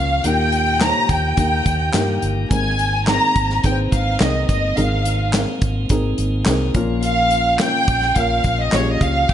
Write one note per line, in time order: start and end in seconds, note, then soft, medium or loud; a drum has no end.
0.00 0.19 C#2 medium
0.00 0.21 F3 soft
0.00 0.24 A#3 medium
0.00 9.25 A#3 soft
0.00 0.21 C#4 medium
0.00 0.26 C#4 medium
0.00 0.26 F4 medium
0.00 0.25 G4 medium
0.00 0.25 A#4 medium
0.00 0.25 F5 medium
0.24 0.91 D#2 medium
0.24 1.05 A#2 medium
0.24 2.49 D#3 soft
0.24 0.72 A#3 medium
0.24 0.73 D#4 medium
0.24 2.49 G4 medium
0.24 0.73 G4 medium
0.24 0.73 A#4 medium
0.24 0.81 G5 medium
0.24 closed hi-hat medium
0.52 closed hi-hat medium
0.80 1.29 A#3 medium
0.80 1.29 D#4 soft
0.80 1.29 G4 soft
0.80 0.88 C5 soft
0.80 1.10 A#5 medium
0.80 snare medium
0.80 clap medium
0.80 closed hi-hat medium
0.88 1.33 C#5 medium
1.09 1.32 D#2 medium
1.09 2.23 G5 medium
1.09 kick medium
1.09 closed hi-hat medium
1.37 1.61 D#2 medium
1.37 1.85 A#3 medium
1.37 1.85 D#4 medium
1.37 1.86 G4 medium
1.37 1.86 A#4 medium
1.37 kick medium
1.37 closed hi-hat medium
1.66 1.89 D#2 medium
1.66 kick medium
1.66 closed hi-hat medium
1.93 2.17 G2 medium
1.93 2.42 A#3 medium
1.93 2.42 D#4 medium
1.93 2.42 G4 medium
1.93 2.43 A#4 medium
1.93 snare medium
1.93 clap medium
1.93 closed hi-hat medium
2.22 2.46 G1 medium
2.22 closed hi-hat medium
2.50 3.18 G#1 medium
2.50 3.31 G#2 medium
2.50 3.31 D#3 medium
2.50 6.71 G#3 soft
2.50 2.98 C4 medium
2.50 6.71 C4 medium
2.50 2.99 D#4 medium
2.50 2.99 G#4 medium
2.50 2.99 A#4 medium
2.50 3.04 G#5 medium
2.50 kick medium
2.50 closed hi-hat medium
2.79 closed hi-hat medium
3.07 3.55 C4 medium
3.07 3.55 D#4 medium
3.07 3.55 G#4 medium
3.07 3.56 A#4 medium
3.07 3.61 A#5 medium
3.07 snare medium
3.07 clap medium
3.07 closed hi-hat medium
3.36 3.59 G#1 medium
3.36 kick medium
3.36 closed hi-hat medium
3.50 snare soft
3.63 3.87 G#1 medium
3.63 4.12 C4 medium
3.63 4.12 D#4 medium
3.63 4.12 G#4 medium
3.63 3.71 B4 medium
3.63 3.78 G5 medium
3.63 kick medium
3.63 closed hi-hat medium
3.71 4.16 C5 medium
3.92 4.15 G#1 medium
3.92 4.19 F5 medium
3.92 kick medium
3.92 closed hi-hat medium
4.20 4.44 C2 medium
4.20 4.68 C4 medium
4.20 4.69 D#4 medium
4.20 4.69 G#4 medium
4.20 4.69 A#4 medium
4.20 4.48 D#5 medium
4.20 snare loud
4.20 clap medium
4.20 closed hi-hat medium
4.49 4.72 G1 medium
4.49 4.75 D#5 medium
4.49 kick medium
4.49 closed hi-hat medium
4.76 5.44 G#1 medium
4.76 5.58 G#2 medium
4.76 5.58 D#3 medium
4.76 5.25 C4 medium
4.76 5.25 D#4 medium
4.76 5.25 G#4 medium
4.76 5.26 A#4 medium
4.76 5.34 F5 medium
4.76 closed hi-hat medium
5.05 closed hi-hat medium
5.33 5.82 C4 medium
5.33 5.82 D#4 soft
5.33 5.82 G#4 soft
5.33 5.82 A#4 medium
5.33 snare medium
5.33 clap medium
5.33 closed hi-hat medium
5.61 5.85 G#1 medium
5.61 kick medium
5.61 closed hi-hat medium
5.89 6.13 G#1 medium
5.89 6.38 C4 medium
5.89 6.38 D#4 medium
5.89 6.38 G#4 medium
5.89 6.39 A#4 medium
5.89 kick medium
5.89 closed hi-hat medium
6.18 6.42 G#1 medium
6.18 closed hi-hat medium
6.45 6.70 C2 medium
6.45 6.75 C4 medium
6.45 6.75 D#4 medium
6.45 6.75 G#4 medium
6.45 6.75 A#4 medium
6.45 snare medium
6.45 clap medium
6.45 closed hi-hat medium
6.74 7.56 A#1 medium
6.74 7.56 A#2 medium
6.74 9.27 F3 soft
6.74 7.56 F3 medium
6.74 7.47 A#3 medium
6.74 9.26 C#4 medium
6.74 7.47 C#4 medium
6.74 7.47 F4 medium
6.74 7.48 A#4 medium
6.74 kick medium
6.74 closed hi-hat medium
7.03 7.57 F5 medium
7.03 closed hi-hat medium
7.31 closed hi-hat medium
7.59 8.08 A#3 medium
7.59 8.08 C#4 medium
7.59 8.08 F4 medium
7.59 8.08 A#4 medium
7.59 8.17 G5 medium
7.59 snare medium
7.59 clap medium
7.59 closed hi-hat medium
7.88 8.11 A#1 medium
7.88 kick medium
7.88 closed hi-hat medium
8.02 snare soft
8.15 8.39 A#1 medium
8.15 8.64 A#3 medium
8.15 8.64 C#4 medium
8.15 8.64 F4 medium
8.15 8.65 A#4 medium
8.15 8.60 F5 medium
8.15 kick medium
8.15 closed hi-hat medium
8.44 8.68 A#1 medium
8.44 kick medium
8.44 closed hi-hat medium
8.61 8.74 D#5 medium
8.72 8.96 A#1 medium
8.72 9.21 A#3 medium
8.72 9.21 C#4 medium
8.72 9.21 F4 medium
8.72 8.80 G4 medium
8.72 8.88 C#5 medium
8.72 snare medium
8.72 clap medium
8.72 closed hi-hat medium
8.80 9.24 G#4 medium
8.89 9.02 D#5 medium
9.01 9.24 C#2 medium
9.01 9.30 F5 medium
9.01 kick medium
9.01 closed hi-hat medium
9.29 kick loud
9.29 crash medium